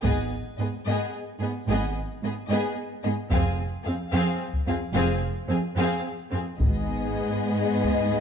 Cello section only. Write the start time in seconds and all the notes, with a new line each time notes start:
0.03 G#2
0.58 G#2
0.86 G#2
1.41 G#2
1.68 G#2
2.23 G#2
2.50 G#2
3.04 G#2
3.31 F2
3.86 F2
4.13 F2
4.67 F2
4.94 F2
5.49 F2
5.77 F2
6.32 F2
6.61 G#2